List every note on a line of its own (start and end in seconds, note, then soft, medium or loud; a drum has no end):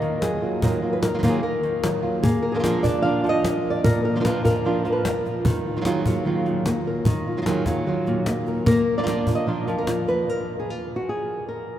0.00 0.60 D#3 medium
0.00 0.96 A#3 soft
0.00 0.22 A#4 medium
0.00 cajon slap soft
0.22 0.42 D#3 soft
0.22 0.42 F#3 soft
0.22 0.42 A#3 soft
0.22 0.41 F4 soft
0.22 0.63 G#4 medium
0.22 cajon slap medium
0.42 0.62 F#3 soft
0.42 0.62 A#3 soft
0.42 0.62 F4 soft
0.42 0.61 F#4 soft
0.62 0.82 D#3 medium
0.62 1.62 D#3 medium
0.62 0.82 F#3 medium
0.62 0.82 A#3 medium
0.62 0.81 F4 medium
0.62 0.92 A#4 medium
0.62 cajon bass medium
0.82 1.13 F#3 soft
0.82 1.14 A#3 soft
0.82 1.14 F4 soft
0.93 1.02 B4 medium
1.03 1.29 A#4 medium
1.03 cajon slap medium
1.14 1.18 D#3 soft
1.14 1.18 F#3 soft
1.14 1.18 A#3 soft
1.14 1.19 F4 soft
1.19 1.22 D#3 medium
1.19 1.22 F#3 medium
1.19 1.23 A#3 medium
1.19 1.23 F4 medium
1.23 1.42 D#3 medium
1.23 1.42 F#3 medium
1.23 2.24 A#3 soft
1.23 1.43 A#3 medium
1.23 1.43 F4 medium
1.23 cajon bass medium
1.29 1.43 G#4 medium
1.43 2.24 A#4 medium
1.43 muted nylon-string guitar stroke medium
1.63 2.21 D#3 medium
1.63 cajon slap soft
1.83 2.03 D#3 soft
1.83 2.03 F#3 soft
1.83 2.03 A#3 soft
1.83 2.02 F4 soft
1.83 cajon slap medium
2.03 2.24 F#3 soft
2.03 2.23 A#3 soft
2.03 2.23 F4 soft
2.23 4.28 A#3 medium
2.23 2.51 G#4 medium
2.23 muted nylon-string guitar stroke medium
2.23 cajon bass medium
2.42 2.55 A#4 medium
2.52 2.58 F3 soft
2.52 2.58 A#3 soft
2.52 2.59 D4 soft
2.52 2.59 F4 soft
2.52 2.99 G#4 medium
2.56 2.63 F3 medium
2.56 2.63 A#3 soft
2.56 2.63 D4 medium
2.56 2.64 F4 medium
2.56 2.83 A#4 medium
2.63 2.83 A#2 medium
2.63 2.83 F3 medium
2.63 2.83 A#3 medium
2.63 2.84 D4 medium
2.63 2.82 F4 medium
2.63 cajon slap medium
2.83 3.03 A#3 soft
2.83 3.82 D4 medium
2.83 3.04 D4 soft
2.83 3.03 F4 soft
2.83 3.44 D5 medium
2.83 cajon bass medium
3.02 3.23 A#2 medium
3.02 3.24 F3 medium
3.02 3.24 A#3 medium
3.02 3.23 D4 medium
3.02 3.23 F4 medium
3.02 3.29 F5 loud
3.24 3.84 F3 medium
3.24 3.43 A#3 soft
3.24 3.44 D4 soft
3.24 3.43 F4 soft
3.24 cajon slap soft
3.29 3.70 D#5 medium
3.44 3.70 A#4 soft
3.44 muted nylon-string guitar stroke soft
3.44 cajon slap loud
3.70 4.25 D5 medium
3.84 5.43 A#2 medium
3.84 4.04 A#4 medium
3.84 muted nylon-string guitar stroke medium
3.84 cajon bass medium
4.05 4.25 A#4 medium
4.16 4.19 F3 soft
4.16 4.20 A#3 soft
4.16 4.20 D4 soft
4.16 4.20 F4 soft
4.20 4.24 F3 soft
4.20 4.24 A#3 medium
4.20 4.25 D4 medium
4.20 4.25 F4 medium
4.25 4.44 A#2 medium
4.25 4.44 F3 medium
4.25 4.45 A#3 medium
4.25 4.44 D4 medium
4.25 4.43 F4 medium
4.25 4.44 B4 medium
4.25 cajon slap medium
4.44 4.85 F3 medium
4.44 4.65 A#3 soft
4.44 4.65 D4 soft
4.44 4.64 F4 soft
4.44 4.92 A#4 medium
4.44 cajon bass medium
4.65 4.84 A#2 medium
4.65 4.85 F3 medium
4.65 4.85 A#3 medium
4.65 4.85 D4 medium
4.65 4.84 F4 medium
4.85 5.45 F3 soft
4.85 5.04 A#3 soft
4.85 5.04 D4 soft
4.85 5.04 F4 soft
4.85 cajon slap soft
4.92 5.05 B4 medium
5.05 5.46 A#4 medium
5.05 muted nylon-string guitar stroke soft
5.05 cajon slap loud
5.25 5.49 F4 soft
5.25 cajon slap soft
5.45 7.04 D#3 medium
5.45 muted nylon-string guitar stroke medium
5.45 cajon bass medium
5.66 7.09 F4 soft
5.77 5.80 D#3 soft
5.77 5.80 F#3 soft
5.77 5.81 A#3 soft
5.77 5.81 F4 soft
5.81 5.84 D#3 soft
5.81 5.85 F#3 medium
5.81 5.85 A#3 medium
5.81 5.85 F4 medium
5.81 cajon slap medium
5.86 6.05 D#3 medium
5.86 6.05 F#3 medium
5.86 6.06 A#3 medium
5.86 6.04 F4 medium
5.86 6.86 G#4 medium
6.06 7.04 F#3 medium
6.06 6.25 F#3 soft
6.06 6.26 A#3 soft
6.06 6.25 F4 soft
6.06 cajon bass medium
6.25 6.65 D#3 medium
6.25 6.65 F#3 medium
6.25 6.65 A#3 medium
6.25 6.66 F4 medium
6.46 7.04 A#2 soft
6.46 cajon slap soft
6.66 8.27 A#3 medium
6.66 muted nylon-string guitar stroke soft
6.66 cajon slap medium
6.87 7.46 A#4 medium
7.05 8.64 D#3 medium
7.05 muted nylon-string guitar stroke medium
7.05 cajon bass medium
7.27 8.67 F4 medium
7.37 7.41 D#3 soft
7.37 7.41 F#3 soft
7.37 7.41 A#3 soft
7.37 7.42 F4 soft
7.42 7.45 D#3 medium
7.42 7.45 F#3 medium
7.42 7.46 A#3 medium
7.42 7.46 F4 medium
7.46 7.66 D#3 medium
7.46 7.66 F#3 medium
7.46 7.66 A#3 medium
7.46 7.65 F4 medium
7.46 8.47 G#4 soft
7.46 cajon slap medium
7.66 8.64 F#3 medium
7.66 7.86 F#3 soft
7.66 7.86 A#3 soft
7.66 7.86 F4 soft
7.66 cajon bass medium
7.66 cajon slap soft
7.86 8.25 D#3 medium
7.86 8.26 F#3 medium
7.86 8.26 A#3 medium
7.86 8.26 F4 medium
8.06 8.65 A#2 medium
8.06 cajon slap soft
8.26 8.66 A#3 medium
8.26 muted nylon-string guitar stroke medium
8.26 cajon slap medium
8.46 8.67 A#4 medium
8.46 cajon slap soft
8.66 10.25 A#3 medium
8.66 9.37 A#4 medium
8.66 muted nylon-string guitar stroke medium
8.66 cajon bass medium
8.98 9.02 F3 soft
8.98 9.02 A#3 soft
8.98 9.02 D4 soft
8.98 9.03 F4 soft
8.98 9.34 D5 medium
9.03 9.06 F3 medium
9.03 9.07 A#3 medium
9.03 9.07 D4 medium
9.03 9.07 F4 medium
9.07 9.26 A#2 medium
9.07 9.27 F3 medium
9.07 9.27 A#3 medium
9.07 9.27 D4 medium
9.07 9.87 F4 soft
9.07 9.26 F4 medium
9.07 cajon slap medium
9.27 9.47 A#3 soft
9.27 9.47 D4 soft
9.27 9.46 F4 soft
9.27 cajon bass medium
9.35 9.78 D#5 loud
9.47 9.66 A#2 medium
9.47 9.67 F3 medium
9.47 9.67 A#3 medium
9.47 9.67 D4 medium
9.47 9.66 F4 medium
9.67 10.25 F3 medium
9.67 9.87 A#3 soft
9.67 9.87 D4 soft
9.67 9.87 F4 soft
9.67 cajon slap soft
9.78 10.08 A#4 medium
9.87 10.25 F4 soft
9.87 muted nylon-string guitar stroke medium
9.87 cajon slap medium
10.08 10.29 B4 medium
10.08 cajon slap soft
10.29 10.58 A#4 medium
10.59 10.70 G#4 medium
10.70 10.95 F4 medium
10.96 11.09 F#4 medium
11.09 11.46 G#4 medium
11.48 11.76 A#4 medium